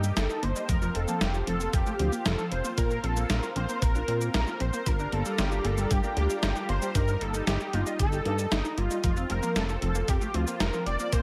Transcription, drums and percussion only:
0.04 cabasa
0.17 snare, closed hi-hat, cabasa
0.30 cabasa
0.43 closed hi-hat
0.56 cabasa
0.69 kick, closed hi-hat, cabasa
0.82 cabasa
0.95 closed hi-hat
1.08 cabasa
1.21 snare, closed hi-hat, cabasa
1.34 cabasa
1.47 closed hi-hat
1.60 cabasa
1.73 kick, closed hi-hat, cabasa
1.86 cabasa
1.99 closed hi-hat
2.12 cabasa
2.26 snare, closed hi-hat, cabasa
2.38 cabasa
2.52 closed hi-hat
2.65 cabasa
2.78 kick, closed hi-hat, cabasa
2.91 cabasa
3.04 closed hi-hat
3.17 cabasa
3.30 snare, closed hi-hat, cabasa
3.43 cabasa
3.56 closed hi-hat
3.69 cabasa
3.82 kick, closed hi-hat, cabasa
3.95 cabasa
4.08 closed hi-hat
4.21 cabasa
4.34 snare, closed hi-hat, cabasa
4.47 cabasa
4.60 closed hi-hat
4.73 cabasa
4.86 kick, closed hi-hat, cabasa
4.99 cabasa
5.12 closed hi-hat
5.25 cabasa
5.38 snare, closed hi-hat, cabasa
5.51 cabasa
5.65 closed hi-hat
5.78 cabasa
5.91 kick, closed hi-hat, cabasa
6.04 cabasa
6.17 closed hi-hat
6.30 cabasa
6.43 snare, closed hi-hat, cabasa
6.56 cabasa
6.69 closed hi-hat
6.82 cabasa
6.95 kick, closed hi-hat, cabasa
7.08 cabasa
7.21 closed hi-hat
7.34 cabasa
7.47 snare, closed hi-hat, cabasa
7.60 cabasa
7.73 closed hi-hat
7.86 cabasa
7.99 kick, closed hi-hat, cabasa
8.13 cabasa
8.25 closed hi-hat
8.39 cabasa
8.52 snare, closed hi-hat, cabasa
8.65 cabasa
8.78 closed hi-hat
8.91 cabasa
9.04 kick, closed hi-hat, cabasa
9.17 cabasa
9.30 closed hi-hat
9.43 cabasa
9.56 snare, closed hi-hat, cabasa
9.69 cabasa
9.82 closed hi-hat
9.95 cabasa
10.08 kick, closed hi-hat, cabasa
10.21 cabasa
10.34 closed hi-hat
10.47 cabasa
10.60 snare, closed hi-hat, cabasa
10.73 cabasa
10.86 closed hi-hat
10.99 cabasa
11.12 kick, closed hi-hat, cabasa

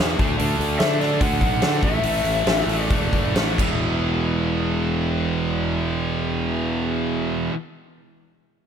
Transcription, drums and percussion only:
0.19 kick, open hi-hat
0.39 open hi-hat
0.61 open hi-hat
0.80 snare, open hi-hat
1.01 snare, open hi-hat
1.21 kick, open hi-hat
1.41 kick, open hi-hat
1.62 snare, open hi-hat
1.83 kick, open hi-hat
2.03 open hi-hat
2.25 open hi-hat
2.47 snare, open hi-hat
2.69 open hi-hat
2.90 kick, open hi-hat
3.13 kick, open hi-hat
3.36 snare, open hi-hat
3.58 kick, crash

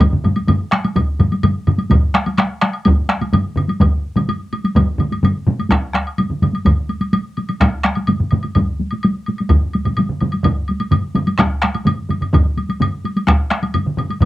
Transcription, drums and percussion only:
0.00 taiko, taiko low-mid, taiko mid, taiko high, high woodblock
0.12 taiko low-mid, taiko mid
0.24 taiko low-mid, taiko mid, taiko high, high woodblock
0.36 taiko high, high woodblock
0.48 taiko low-mid, taiko mid, taiko high, high woodblock
0.72 taiko rim, taiko high, high woodblock
0.84 taiko high, high woodblock
0.96 taiko, taiko high, high woodblock
1.19 taiko low-mid, taiko mid, taiko high, high woodblock
1.32 taiko high, high woodblock
1.43 taiko low-mid, taiko mid, taiko high, high woodblock
1.67 taiko low-mid, taiko mid, high woodblock
1.78 taiko high, high woodblock
1.91 taiko, taiko low-mid, taiko mid, taiko high, high woodblock
2.14 taiko rim, taiko high, high woodblock
2.26 taiko high, high woodblock
2.38 taiko rim, taiko high, high woodblock
2.62 taiko rim, taiko high, high woodblock
2.73 high woodblock
2.85 taiko, taiko low-mid, taiko mid, taiko high, high woodblock
3.09 taiko rim, taiko high, high woodblock
3.21 taiko high, high woodblock
3.33 taiko low-mid, taiko mid, taiko high, high woodblock
3.56 taiko low-mid, taiko mid, high woodblock
3.68 taiko high, high woodblock
3.80 taiko, taiko low-mid, taiko mid, taiko high, high woodblock
4.16 taiko low-mid, taiko mid, taiko high, high woodblock
4.29 taiko high, high woodblock
4.53 taiko high, high woodblock
4.65 taiko high, high woodblock
4.75 taiko, taiko low-mid, taiko mid, taiko high, high woodblock
4.98 taiko low-mid, taiko mid, taiko high, high woodblock
5.12 taiko high, high woodblock
5.23 taiko low-mid, taiko mid, taiko high, high woodblock
5.47 taiko low-mid, taiko mid, taiko high
5.59 taiko high, high woodblock
5.70 taiko rim, taiko, taiko high, high woodblock
5.94 taiko rim, taiko high, high woodblock
6.07 high woodblock
6.18 taiko low-mid, taiko mid, taiko high, high woodblock
6.30 taiko low-mid, taiko mid
6.42 taiko low-mid, taiko mid, taiko high, high woodblock
6.54 taiko high, high woodblock
6.65 taiko, taiko low-mid, taiko mid, taiko high, high woodblock
6.89 taiko high, high woodblock
7.01 taiko high, high woodblock
7.13 taiko high, high woodblock
7.37 taiko high, high woodblock
7.49 taiko high, high woodblock
7.61 taiko rim, taiko, taiko high, high woodblock
7.83 taiko rim, taiko high, high woodblock
7.95 taiko high, high woodblock
8.07 taiko low-mid, taiko mid, taiko high, high woodblock
8.20 taiko low-mid, taiko mid
8.31 taiko low-mid, taiko mid, taiko high, high woodblock
8.43 taiko high, high woodblock
8.55 taiko, taiko low-mid, taiko mid, taiko high, high woodblock
8.79 taiko high
8.91 taiko high, high woodblock
9.03 taiko high, high woodblock
9.26 taiko high, high woodblock
9.38 taiko high, high woodblock
9.49 taiko, taiko low-mid, taiko mid, taiko high, high woodblock
9.73 taiko high, high woodblock
9.85 taiko low-mid, taiko mid, taiko high, high woodblock
9.97 taiko low-mid, taiko mid, taiko high, high woodblock
10.09 taiko low-mid, taiko mid
10.21 taiko low-mid, taiko mid, taiko high, high woodblock
10.32 taiko high, high woodblock
10.43 taiko, taiko low-mid, taiko mid, taiko high, high woodblock
10.68 taiko high, high woodblock
10.80 taiko high, high woodblock
10.91 taiko low-mid, taiko mid, taiko high, high woodblock
11.15 taiko low-mid, taiko mid, taiko high, high woodblock
11.27 taiko high, high woodblock
11.38 taiko rim, taiko, taiko high, high woodblock
11.40 taiko rim
11.62 taiko rim, taiko high, high woodblock
11.75 taiko high, high woodblock
11.85 taiko low-mid, taiko mid, taiko high, high woodblock
12.09 taiko low-mid, taiko mid, taiko high, high woodblock
12.21 taiko low-mid, taiko mid, high woodblock
12.33 taiko, taiko low-mid, taiko mid, taiko high, high woodblock
12.57 taiko high, high woodblock
12.69 taiko high, high woodblock
12.80 taiko low-mid, taiko mid, taiko high, high woodblock
13.05 taiko high, high woodblock
13.16 taiko high, high woodblock
13.27 taiko rim, taiko, taiko high, high woodblock
13.50 taiko rim, taiko high, high woodblock
13.63 taiko high, high woodblock
13.74 taiko low-mid, taiko mid, taiko high, high woodblock
13.86 taiko low-mid, taiko mid
13.97 taiko low-mid, taiko mid, taiko high, high woodblock
14.10 taiko high, high woodblock
14.21 taiko, taiko low-mid, taiko mid, high woodblock

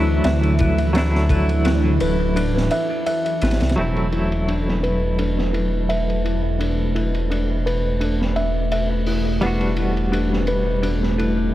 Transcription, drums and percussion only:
0.24 snare, ride
0.43 ride
0.59 kick, ride
0.78 ride
0.95 snare, ride
1.15 snare
1.29 kick, ride
1.49 ride
1.65 snare, ride
2.00 ride
2.37 ride
2.57 snare
2.71 ride
3.06 ride
3.26 ride
3.42 snare, ride
3.51 snare, ride
3.60 snare, ride
3.69 snare, ride
3.77 ride
3.96 ride
4.12 ride
4.32 ride
4.48 ride
4.68 snare
4.84 ride
5.19 ride
5.38 snare
5.54 ride
5.90 ride
6.10 ride
6.25 ride
6.61 ride
6.96 ride
7.14 ride
7.32 ride
7.67 ride
8.01 ride
8.22 snare
8.36 ride
8.72 ride
9.06 open hi-hat
9.41 ride
9.61 ride
9.77 ride
9.97 ride
10.13 ride
10.33 snare
10.47 ride
10.83 ride
11.03 snare
11.19 ride

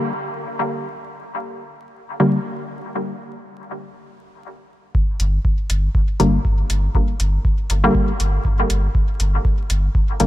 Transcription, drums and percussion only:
4.95 kick
5.20 closed hi-hat
5.45 kick
5.70 closed hi-hat
5.95 kick
6.20 closed hi-hat
6.45 kick
6.70 closed hi-hat
6.95 kick
7.20 closed hi-hat
7.45 kick
7.70 closed hi-hat
7.95 kick
8.20 closed hi-hat
8.45 kick
8.70 closed hi-hat
8.95 kick
9.20 closed hi-hat
9.45 kick
9.70 closed hi-hat
9.95 kick
10.20 closed hi-hat

